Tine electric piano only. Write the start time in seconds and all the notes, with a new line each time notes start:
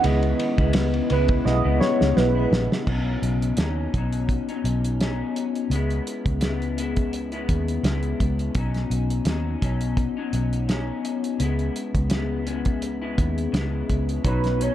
0.03 E4 G#4 B4 D#5
1.44 E4 G#4 B4 F#5
1.81 E4 G#4 B4 D#5
14.24 D#4 F#4 B4 C#5